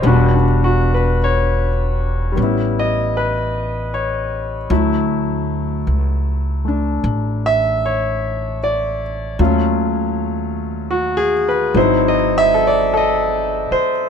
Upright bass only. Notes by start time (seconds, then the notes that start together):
0.03 E1
2.37 A1
4.70 D2
5.87 C#2
7.04 A1
9.39 D#2
11.74 G#1
13.71 muted upright bass stroke